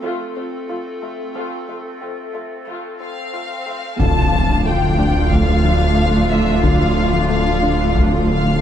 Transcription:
Already playing: A3 C4 F4 A4
0.03 F2 F3 A3 F4
0.36 F2 A3 C4 F4
0.68 F2 A3 F4
1.02 F2 A3 F4
1.34 F2 F3 A3 F4, swell
1.68 F2 A3 F4
2.01 F2 A3 C4 F4
2.33 F2 A3 F4
2.67 F2 F3 A3 F4
3.00 F2 A3 C4 F4 F5
3.33 F2 A3 F4
3.66 F2 A3 F4
3.99 D1 D2 D3 F3 A3 D4 F4 A4 F5 A5, taiko, impact
4.32 F3
4.66 A3 G5
4.99 D4
5.32 D3 F5, taiko
5.65 F3
5.97 F3
6.31 E5
6.63 D3 F5, taiko
6.97 F3
7.29 A3 F5
7.63 D4
7.95 D3, taiko
8.28 F3 F5

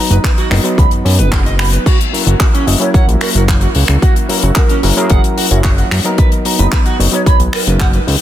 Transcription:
Already playing: F#3 B3 D#4 A#5
0.10 F#1 B4, closed hi-hat
0.24 B4, kick, clap, closed hi-hat
0.38 F#4, closed hi-hat
0.50 F#1 F#3 B3 D#4 A#4, finger snap, open hi-hat
0.64 F#3 B3 D#4, closed hi-hat
0.78 C#2 B5, kick, closed hi-hat
0.91 F#2, closed hi-hat
1.05 F#2 B3, open hi-hat
1.19 F#1 B4, closed hi-hat
1.32 B3, kick, clap, closed hi-hat
1.46 D#5, closed hi-hat
1.59 B5, finger snap, open hi-hat
1.73 B4, closed hi-hat
1.86 A#3 E4 F#4, kick, closed hi-hat, crash
2.01 closed hi-hat
2.12 F#3 C#4 E4 A#4, open hi-hat
2.27 F#1 F#4, closed hi-hat
2.40 F#4, kick, clap, closed hi-hat
2.54 C#4, closed hi-hat
2.67 F#1 F#3 C#4 E4 D#5, open hi-hat
2.80 F#3 C#4 E4 A#4 C#5, closed hi-hat
2.94 A#1 C#5 F#5, kick, closed hi-hat
3.08 A#1, closed hi-hat
3.21 F#4 A#4, finger snap, open hi-hat
3.35 F#1 F#4 A#4, closed hi-hat
3.48 C#5, kick, clap, closed hi-hat
3.61 F#4, closed hi-hat
3.75 C#2, open hi-hat
3.88 C#2, finger snap
4.02 F#4, kick, closed hi-hat
4.16 closed hi-hat
4.29 F#3 C#4 E4 A#4, open hi-hat
4.43 F#1 F#4, closed hi-hat
4.55 F#4 A#4, kick, clap, closed hi-hat
4.69 C#4, closed hi-hat
4.83 F#1 F#3 C#4 E4 A#4, open hi-hat
4.97 F#3 C#4 E4 G#4 A#4, closed hi-hat
5.10 F#1 G#4 F#5, kick, closed hi-hat
5.24 closed hi-hat
5.38 F#4, open hi-hat
5.51 F#1 F#3 C#4 E4 F#4 C#5, closed hi-hat
5.64 C#5, kick, clap, closed hi-hat
5.78 F#4, closed hi-hat
5.91 F#2, finger snap, open hi-hat
6.05 F#3 B3 D#4 A#4, closed hi-hat
6.18 B3 D#4 B4, kick, closed hi-hat
6.32 closed hi-hat
6.45 F#3 B3 D#4 A#5, open hi-hat
6.59 F#1 B4, closed hi-hat
6.72 B4, kick, clap, closed hi-hat
6.86 F#4, closed hi-hat
6.99 F#1 F#3 B3 D#4 C#5, open hi-hat
7.12 F#3 B3 D#4 C#5, closed hi-hat
7.26 B1 C#5 B5, kick, closed hi-hat
7.40 B1, closed hi-hat
7.53 A#4 B4, finger snap, open hi-hat
7.67 F#1 A#4 B4, closed hi-hat
7.80 F#5, kick, clap, closed hi-hat
7.93 B4, closed hi-hat
8.07 C#2, open hi-hat

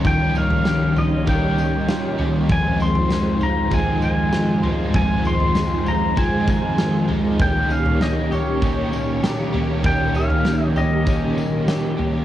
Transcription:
Already playing: D#3 G3 C#4 D#4 F4 C#5
0.02 D#3 F3 A#3 D#4 G4, kick, floor tom, tambourine
0.07 G4 C#5 G5
0.35 D#4 F5, tambourine
0.50 floor tom
0.65 C#4, snare, tambourine
0.96 F4 D#5, floor tom, tambourine
1.26 A#3 D#4 G4 C#5 G5, kick, floor tom, tambourine
1.57 C#4, tambourine
1.88 F4, snare, tambourine
2.18 A#3 C#4 D#4 G4 C#5, floor tom
2.48 F2 F3 G#3 D#4 F4 C5, kick, floor tom, tambourine
2.52 F4 C5 G#5
2.80 C4 C6, tambourine
2.95 floor tom
3.11 G#3, snare, tambourine
3.41 F4 A#5, floor tom, tambourine
3.71 G#3 C4 D#4 F4 C5 G#5, kick, floor tom, tambourine
4.02 G#3 G#5, tambourine
4.33 F4, snare, tambourine
4.63 G#3 D#4 F4 C5, floor tom
4.93 F2 F3 G#3 D#4 G#5, kick, floor tom, tambourine
4.97 F4 C5
5.25 C4 C6, tambourine
5.40 floor tom
5.55 G#3, snare, tambourine
5.86 F4 A#5, floor tom, tambourine
6.16 G#3 C4 D#4 F4 C5 G#5, kick, tambourine
6.47 G#3 G#5, kick, tambourine
6.78 F4, snare, tambourine
7.08 G#3 D#4 F4 C5, floor tom
7.38 D#3 A#3 G4 C#5 G5, kick, floor tom, tambourine
7.42 C#4 G4
7.70 C#4 F5, tambourine
7.86 floor tom
8.01 A#3 D#5, snare, tambourine
8.31 G4 C#5, floor tom, tambourine
8.61 D#3 A#3 C#4 G4, kick, tambourine
8.92 A#3, tambourine
9.23 G4, snare, tambourine
9.53 A#3 C#4 G4, floor tom
9.82 D#3 A#3, kick, floor tom, tambourine
9.86 C#4 G4 G5
10.15 C#4 F5, tambourine
10.30 floor tom
10.45 A#3, snare, tambourine
10.64 D#5
10.76 G4 D#5, floor tom, tambourine
11.05 D#3 A#3 C#4 G4, kick, tambourine
11.37 A#3, tambourine
11.68 G4, snare, tambourine
11.97 A#3 C#4 G4, floor tom

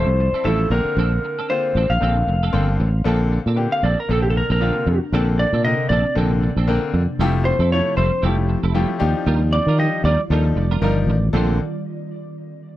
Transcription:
Already playing: F3 A3 E4 A4 C5
0.07 C2, muted clean electric guitar stroke
0.20 muted clean electric guitar stroke
0.33 C4 E4 A4, muted fretless electric bass stroke
0.44 A1 F3 G3 A3 C4 E4 A4
0.60 muted clean electric guitar stroke
0.70 A#1 D3 A#3 C4 A#4, muted clean electric guitar stroke
0.85 muted fretless electric bass stroke
0.97 A#1 F3 C4 D4 A4
1.13 muted clean electric guitar stroke
1.24 muted clean electric guitar stroke
1.39 C4 D4 A4
1.50 D3 A#3 C4 F4 C5, muted clean electric guitar stroke
1.75 A1 F3 C4 D4 A4
1.90 A#1 F5, muted clean electric guitar stroke
2.00 A#1 D3 F3 A#3 C4 D4 A4
2.17 muted clean electric guitar stroke
2.27 F1, muted clean electric guitar stroke
2.43 C4 D4 A4
2.53 G1 D3 F3 A#3 C4 D4 A4 C6
2.69 muted clean electric guitar stroke
2.80 A1, muted clean electric guitar stroke
3.04 A#1 C3 D3 F3 A#3 C4 D4 A4
3.21 muted clean electric guitar stroke
3.32 muted clean electric guitar stroke
3.46 A#2 C4 D4 A4
3.56 D3 A#3 C4 G4, muted clean electric guitar stroke
3.72 F5
3.83 A#1 F3 C4 D4 A4 D5
3.99 A#4, muted clean electric guitar stroke
4.08 A#1 D3 F3 A#3 C4 D4 A4
4.13 A4
4.23 G4, muted clean electric guitar stroke
4.30 A4
4.35 A#4, muted clean electric guitar stroke
4.50 A#1 C4 D4 A4 A#4
4.61 D3 F3 A#3 C4 D4 F4 A4
4.76 muted clean electric guitar stroke
4.86 F2, muted clean electric guitar stroke
5.12 A#1 D3 F3 A#3 C4 D4 A4
5.28 muted clean electric guitar stroke
5.39 D5, muted clean electric guitar stroke
5.53 A#2 C4 D4 A4
5.65 D3 A#3 C4 A#4 D#5, muted clean electric guitar stroke
5.89 A#1 F3 C4 D4 A4 D5
6.06 muted clean electric guitar stroke
6.15 A#1 D3 F3 A#3 C4 D4 A4
6.32 muted clean electric guitar stroke
6.43 muted clean electric guitar stroke
6.56 A#1 C4 D4 A4
6.67 D3 F3 A#3 C4 D4 A4 A#4
6.82 muted clean electric guitar stroke
6.93 F2, muted clean electric guitar stroke
7.19 F1 F3 G3 A3 C4 E4 G4 A4
7.35 muted clean electric guitar stroke
7.45 C5, muted clean electric guitar stroke
7.59 F2 C4 E4 A4
7.71 F3 A3 E4 A4 C#5, muted clean electric guitar stroke
7.97 F1 G3 C4 E4 A4 C5
8.11 muted clean electric guitar stroke
8.22 F1 F3 G3 A3 C4 E4 G4 A4
8.37 muted clean electric guitar stroke
8.49 muted clean electric guitar stroke
8.63 F1 C4 E4 A4
8.74 F3 G3 A3 C4 E4 G4 A4
8.89 muted clean electric guitar stroke
8.99 D#2 D#3 F3 G3 D4 D#4 F4 G4 D5, muted clean electric guitar stroke
9.26 D#2 G3 D4 F4 A#4
9.42 muted clean electric guitar stroke
9.53 D5, muted clean electric guitar stroke
9.67 D#3 D4 F4 A#4
9.78 F3 D4 D#4 G4 D#5, muted clean electric guitar stroke
10.04 D#2 G3 D4 F4 A#4 D5
10.20 muted clean electric guitar stroke
10.30 D#2 F3 G3 D4 D#4 F4 A4 A#4
10.46 muted clean electric guitar stroke
10.56 F1, muted clean electric guitar stroke
10.71 D4 F4 A#4
10.82 G1 F3 G3 D4 D#4 F4 A#4
10.98 muted clean electric guitar stroke
11.07 A1, muted clean electric guitar stroke
11.33 A#1 D3 A3 A#3 C4 D4 F4 A4 C5

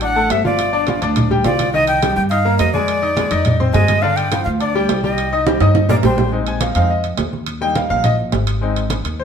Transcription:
Already playing: A1
0.01 D4 D5 F#5 D6, high conga, high timbale
0.16 A3 A4 A5, high conga
0.30 G1 E5, high conga, high timbale, low timbale
0.44 F3 F4 D5 F5, high conga
0.59 high conga, high timbale
0.73 D4 D5 D6, high conga
0.87 F3 F4 F5, high conga, high timbale, low timbale
1.02 D2 D4 D5 D6, high conga, high timbale
1.16 high conga, low conga, high timbale
1.31 G3 G4 G5, high conga, low conga
1.44 C2 F3 F4 D5 F5, high conga, high timbale, low timbale
1.59 high conga, high timbale
1.73 D#3 D#4 D#5, high conga
1.87 G5, high conga, high timbale
2.02 G3 G4 G5, high conga, high timbale, low timbale
2.16 G2 G5, high conga
2.30 D#4 D#5 F5 D#6, high conga, high timbale
2.45 A#3 A#4 A#5, high conga
2.58 F2 D#5, high conga, high timbale, low timbale
2.73 G#3 G#4 D5 G#5, high conga
2.88 high conga, high timbale
3.02 D#4 D#5 D#6, high conga
3.16 G#3 G#4 G#5, high conga, high timbale, low timbale
3.31 F2 D#4 D#5 D#6, high conga, high timbale
3.45 high conga, low conga, high timbale
3.60 C4 C5 C6, high conga, low conga
3.73 G2 G#3 G#4 D#5 G#5, high conga, high timbale, low timbale
3.88 high conga, high timbale
4.02 D3 D4 D5 F5, high conga
4.16 G5, high conga, high timbale
4.32 F3 F4 F5, high conga, high timbale, low timbale
4.44 D2 F5, high conga
4.60 D4 D5 D6, high conga, high timbale
4.75 G3 G4 G5, high conga
4.89 C2, high conga, high timbale, low timbale
5.04 G3 G4 D#5 G5, high conga
5.18 high conga, high timbale
5.32 D#4 D#5 D#6, high conga
5.47 G3 G4 G5, high conga, high timbale
5.60 G2 D#4 D#5 D#6, high conga, high timbale
5.75 high conga, high timbale
5.89 A#3 A#4 D5 A#5, low conga, low timbale
6.03 A#1 G3 G4 C5 G5, low conga, low timbale
6.18 low conga, low timbale
6.32 G#3 C4 D#4, high conga
6.46 G#5, high conga, high timbale
6.61 F5, high conga, high timbale, low timbale
6.75 F2 G#3 C4 D#4 F5, high conga, high timbale
6.90 D#5, high conga
7.04 high conga, high timbale
7.17 D#2, high conga, high timbale, low timbale
7.33 high conga
7.46 high conga, high timbale
7.61 G3 A#3 D#4 G5, high conga
7.75 F5, high conga, high timbale, low timbale
7.90 A#1 F5, high conga
8.04 D#5, high conga, low conga, high timbale
8.19 high conga
8.32 G#1, high conga, high timbale, low timbale
8.47 high timbale
8.61 G#3 C4 D#4, high conga
8.76 high conga, high timbale
8.90 high conga, high timbale, low timbale
9.05 D#2, high conga, high timbale
9.19 C5, high conga

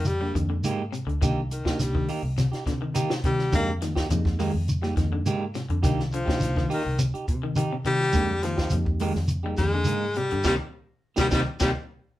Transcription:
Already playing: F2
0.05 G3, closed hi-hat, shekere
0.21 G3 G#3 A#3 D4 G4
0.35 F2 D#3, muted clean electric guitar stroke, kick, closed hi-hat, shekere
0.50 D3, muted clean electric guitar stroke
0.63 G#2 G#3 A#3 D#4 G4, closed hi-hat, shekere
0.92 C3, muted clean electric guitar stroke, closed hi-hat, shekere
1.07 D2 D3, muted clean electric guitar stroke, closed hi-hat
1.21 C2 D#3 A#3 D4 D#4 G4, kick, closed hi-hat, shekere
1.51 D#3, muted clean electric guitar stroke, closed hi-hat, shekere
1.65 C3 A#3 D4 D#4 G4, muted fingered electric bass stroke, kick, snare
1.79 C2 G3, muted clean electric guitar stroke, snare, closed hi-hat, shekere
1.95 D#3, muted clean electric guitar stroke, kick
2.08 A#3 D#4 G4, open hi-hat, shekere
2.23 C2, muted clean electric guitar stroke
2.38 C3, snare, closed hi-hat, shekere
2.52 D#4 G4, muted fingered electric bass stroke, snare, closed hi-hat
2.66 C3 D3, muted clean electric guitar stroke, kick, snare, closed hi-hat, shekere
2.81 D#3, muted clean electric guitar stroke
2.94 D#3 A#3 D#4 G4, closed hi-hat, shekere
3.10 C3, snare
3.24 C3 D#3 G3, muted clean electric guitar stroke, kick, closed hi-hat, shekere
3.38 muted clean electric guitar stroke, snare
3.52 F2 D3 G3 G#3 A#3 D#4 G4, kick, snare, closed hi-hat, shekere
3.81 D#3 G3 G#3 A#3 D#4, muted clean electric guitar stroke, snare, closed hi-hat, shekere
3.95 A#3 D#4 G4, kick, snare
4.10 F2 F3 G3 G#3 A#3 D#4, muted clean electric guitar stroke, closed hi-hat, shekere
4.25 muted clean electric guitar stroke, kick, snare
4.39 D#3 G#3 A#3 D#4 G4, open hi-hat, shekere
4.54 F2, muted clean electric guitar stroke
4.68 closed hi-hat, shekere
4.82 G3 G#3 A#3 D#4 G4, snare
4.97 F2 D#3, muted clean electric guitar stroke, kick, snare, closed hi-hat, shekere
5.12 D3, muted clean electric guitar stroke
5.25 G#2 G#3 A#3 D#4 G4, closed hi-hat, shekere
5.54 C3, muted clean electric guitar stroke, snare, closed hi-hat, shekere
5.69 F2 D3, muted clean electric guitar stroke, closed hi-hat
5.82 C2 D#3 A#3 D4 D#4 G4, kick, snare, closed hi-hat, shekere
6.00 snare
6.11 D3 F3, muted clean electric guitar stroke, closed hi-hat, shekere
6.25 C3 A#3 D4 D#4 G4, muted fingered electric bass stroke, kick, snare
6.40 C2, muted clean electric guitar stroke, snare, closed hi-hat, shekere
6.55 D#3, muted clean electric guitar stroke, kick, snare
6.69 D#3 A#3 D#4 G4, open hi-hat, shekere
6.84 C2, muted clean electric guitar stroke
6.99 C3, closed hi-hat, shekere
7.14 D#4 G4, muted fingered electric bass stroke, closed hi-hat
7.28 C3, muted clean electric guitar stroke, kick, closed hi-hat, shekere
7.43 D#3, muted clean electric guitar stroke
7.56 D#3 D#4 G4, muted clean electric guitar stroke, closed hi-hat, shekere
7.72 C3
7.84 C3 D#3 G3, muted clean electric guitar stroke, closed hi-hat, shekere
7.99 muted clean electric guitar stroke, snare
8.13 F2 D3 G#3 A#3 D#4 G4, muted clean electric guitar stroke, kick, closed hi-hat, shekere
8.41 D#3 F3 G#3 A#3 D#4 G4, muted clean electric guitar stroke, snare, closed hi-hat, shekere
8.56 A#3 D#4 G4, kick, snare
8.70 F2 F3 G#3 A#3 D#4 G4, muted clean electric guitar stroke, closed hi-hat, shekere
8.85 muted clean electric guitar stroke, kick
8.99 D#3 G#3 A#3 D#4 G4, open hi-hat, shekere
9.15 F2, muted clean electric guitar stroke, snare
9.28 closed hi-hat, shekere
9.43 G3 G#3 A#3 D#4 G4 G#4
9.57 F2 D#3 G#3, muted clean electric guitar stroke, kick, snare, closed hi-hat, shekere
9.72 D3, muted clean electric guitar stroke
9.84 G#3 A#3 D#4, muted clean electric guitar stroke, closed hi-hat, shekere
9.89 G#2
10.13 C3, muted clean electric guitar stroke, closed hi-hat, shekere
10.18 G3
10.29 G2 D3, muted clean electric guitar stroke, closed hi-hat
10.44 C2 C3 D#3 G3 A#3 C4 D#4 G4, kick, snare, shekere
11.16 C2 C3 D#3 G3 A#3 C4 D#4 G4, kick, snare, shekere
11.20 G3
11.31 C2 C3 D#3 G3 A#3 C4 D#4 G4, kick, snare, shekere
11.60 C2 C3 D#3 G3 A#3 C4 D#4 G4, kick, snare, shekere

